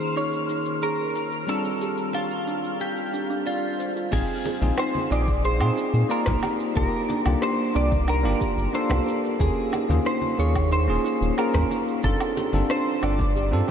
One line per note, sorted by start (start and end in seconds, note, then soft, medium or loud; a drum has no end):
0.00 1.44 D#3 medium
0.00 1.44 A#3 medium
0.00 1.45 C#4 medium
0.00 1.45 F4 medium
0.00 1.46 G#4 medium
0.00 0.17 C5 medium
0.00 4.13 F6 medium
0.00 shaker soft
0.16 0.25 D#4 medium
0.16 0.83 C#5 medium
0.16 shaker soft
0.33 shaker soft
0.49 0.65 D#4 medium
0.49 shaker medium
0.65 shaker soft
0.82 0.97 G#4 medium
0.82 1.45 A#4 medium
0.82 shaker soft
1.15 1.24 D#4 medium
1.15 shaker medium
1.32 shaker soft
1.47 4.07 G3 medium
1.47 4.08 C4 medium
1.47 1.63 D4 medium
1.47 4.08 D4 medium
1.47 4.09 F4 medium
1.47 2.17 A4 medium
1.47 4.09 A4 medium
1.47 shaker soft
1.65 shaker soft
1.81 1.96 G4 medium
1.81 shaker medium
1.98 shaker soft
2.14 2.23 D4 medium
2.14 2.76 F4 medium
2.14 shaker soft
2.31 shaker soft
2.47 2.62 D4 medium
2.47 shaker medium
2.64 shaker soft
2.80 2.95 G4 medium
2.80 3.46 G4 medium
2.80 shaker soft
2.97 shaker soft
3.13 3.22 D4 medium
3.13 shaker medium
3.30 3.45 D4 medium
3.30 shaker soft
3.46 3.93 F4 medium
3.46 3.55 D5 medium
3.46 shaker soft
3.79 3.94 C5 medium
3.79 shaker medium
3.96 4.05 F4 medium
3.96 shaker soft
4.11 4.23 A#1 loud
4.11 4.57 C4 medium
4.11 4.58 D#4 medium
4.11 4.27 D#4 loud
4.11 4.58 F4 medium
4.11 4.75 G#4 loud
4.11 4.58 G#4 medium
4.11 kick loud
4.11 crash loud
4.11 shaker soft
4.45 4.60 G#4 medium
4.45 muted conga medium
4.45 shaker medium
4.61 4.72 A#1 medium
4.61 5.07 C4 medium
4.61 5.07 D#4 medium
4.61 5.08 F4 medium
4.61 5.08 G#4 medium
4.61 high conga medium
4.61 shaker soft
4.78 4.87 D#4 loud
4.78 5.12 C5 loud
4.78 cross-stick medium
4.78 low woodblock medium
4.78 shaker soft
4.95 high conga medium
5.10 5.62 A#1 medium
5.10 5.27 C4 medium
5.10 5.27 D#4 medium
5.10 5.26 D#4 loud
5.10 5.28 F4 medium
5.10 5.28 G#4 loud
5.10 5.45 D5 loud
5.10 shaker medium
5.28 kick loud
5.28 shaker soft
5.45 5.59 G#4 medium
5.45 6.07 C5 loud
5.45 shaker soft
5.60 5.71 A#2 medium
5.60 6.06 C4 medium
5.60 6.06 D#4 medium
5.60 6.06 F4 medium
5.60 6.07 G#4 loud
5.60 low woodblock medium
5.77 5.86 D#4 loud
5.77 shaker medium
5.94 6.04 A#2 medium
5.94 shaker soft
6.09 6.72 A#3 medium
6.09 6.25 D#4 medium
6.09 6.72 F4 medium
6.09 6.57 A#4 loud
6.09 6.72 D5 medium
6.09 shaker soft
6.26 6.37 A#1 medium
6.26 kick medium
6.26 cross-stick medium
6.26 muted conga medium
6.26 low conga medium
6.43 6.58 G4 medium
6.43 muted conga medium
6.43 low woodblock medium
6.43 shaker medium
6.60 shaker soft
6.76 6.86 C2 loud
6.76 7.21 A#3 medium
6.76 6.85 D4 loud
6.76 7.22 D4 medium
6.76 7.22 F4 medium
6.76 7.22 G4 medium
6.76 7.25 A#4 loud
6.76 kick loud
6.76 shaker soft
7.09 7.24 D4 loud
7.09 muted conga medium
7.09 shaker medium
7.25 7.36 C2 medium
7.25 7.71 A#3 medium
7.25 7.71 D4 medium
7.25 7.71 F4 medium
7.25 7.72 G4 medium
7.25 7.43 A4 loud
7.25 high conga medium
7.25 low woodblock medium
7.25 shaker soft
7.42 7.57 G4 medium
7.42 7.76 C5 loud
7.42 cross-stick medium
7.42 shaker soft
7.74 8.26 C2 medium
7.74 7.91 A#3 medium
7.74 7.83 D4 loud
7.74 7.91 D4 medium
7.74 7.92 F4 medium
7.74 7.92 G4 medium
7.74 8.09 D5 loud
7.74 shaker medium
7.91 kick loud
7.91 high conga medium
7.91 shaker soft
8.07 8.22 D4 loud
8.07 8.75 A#4 medium
8.07 low woodblock medium
8.07 shaker soft
8.23 8.35 G1 medium
8.23 8.69 A#3 medium
8.23 8.70 D4 medium
8.23 8.70 F4 medium
8.23 8.70 G4 loud
8.40 8.55 G4 medium
8.40 kick loud
8.40 shaker medium
8.57 8.67 G1 medium
8.57 shaker soft
8.73 9.35 A#3 medium
8.73 8.83 D4 medium
8.73 9.36 D4 medium
8.73 9.36 F4 medium
8.73 9.37 A4 loud
8.73 9.20 C5 medium
8.73 shaker soft
8.90 9.00 C2 medium
8.90 cross-stick medium
8.90 low conga medium
8.90 low woodblock medium
9.06 9.21 D4 medium
9.06 shaker medium
9.25 shaker soft
9.39 9.50 D#2 medium
9.39 9.85 A#3 medium
9.39 9.85 C#4 medium
9.39 9.86 F4 medium
9.39 9.54 G#4 medium
9.39 10.08 G#4 medium
9.39 9.86 G#4 medium
9.39 kick loud
9.39 shaker soft
9.72 9.81 D#4 loud
9.72 muted conga soft
9.72 low woodblock medium
9.72 shaker medium
9.88 10.00 D#2 loud
9.88 10.34 A#3 medium
9.88 10.35 C#4 medium
9.88 10.35 F4 medium
9.88 10.35 G#4 medium
9.88 high conga medium
9.88 shaker soft
10.05 10.20 D#4 loud
10.05 10.37 C5 loud
10.05 cross-stick medium
10.05 shaker soft
10.22 high conga medium
10.38 10.90 D#2 medium
10.38 10.55 A#3 medium
10.38 10.55 C#4 medium
10.38 10.55 F4 medium
10.38 10.53 G#4 medium
10.38 10.56 G#4 medium
10.38 10.72 C#5 medium
10.38 shaker medium
10.56 kick loud
10.56 low woodblock medium
10.56 shaker soft
10.71 10.80 D#4 loud
10.71 11.38 C5 medium
10.71 shaker soft
10.88 10.98 D#1 medium
10.88 11.33 A#3 medium
10.88 11.34 C#4 medium
10.88 11.34 F4 medium
10.88 11.34 G#4 loud
11.04 11.19 D#4 loud
11.04 shaker medium
11.21 11.31 D#1 medium
11.21 shaker soft
11.37 12.00 A#3 medium
11.37 12.00 C#4 medium
11.37 12.00 F4 medium
11.37 11.52 G#4 medium
11.37 11.84 A#4 medium
11.37 12.01 A#4 loud
11.37 low woodblock medium
11.37 shaker soft
11.54 11.65 D#2 medium
11.54 kick medium
11.54 cross-stick medium
11.54 muted conga soft
11.54 low conga medium
11.71 11.79 D#4 medium
11.71 muted conga soft
11.71 shaker medium
11.88 shaker soft
12.03 12.14 G1 loud
12.03 12.49 C4 medium
12.03 12.18 D4 medium
12.03 12.49 D4 medium
12.03 12.50 F4 medium
12.03 12.72 A4 medium
12.03 12.50 A4 medium
12.03 kick loud
12.03 shaker soft
12.21 low woodblock medium
12.21 shaker soft
12.37 12.51 G4 medium
12.37 muted conga medium
12.37 shaker medium
12.53 12.63 G1 loud
12.53 12.98 C4 medium
12.53 12.99 D4 medium
12.53 12.99 F4 medium
12.53 12.99 A4 medium
12.53 high conga medium
12.53 shaker soft
12.69 12.78 D4 loud
12.69 13.01 C5 loud
12.69 cross-stick medium
12.69 shaker soft
13.02 13.54 G1 medium
13.02 13.18 C4 medium
13.02 13.17 D4 loud
13.02 13.19 D4 medium
13.02 13.19 F4 medium
13.02 13.19 A4 medium
13.02 13.71 D5 medium
13.02 low woodblock medium
13.02 shaker medium
13.19 kick loud
13.19 muted conga soft
13.19 high conga medium
13.19 shaker soft
13.35 13.50 G4 medium
13.35 shaker soft
13.51 13.62 G2 medium
13.51 13.65 C4 medium
13.51 13.65 D4 medium
13.51 13.65 F4 medium
13.51 13.66 A4 loud
13.67 13.71 C4 medium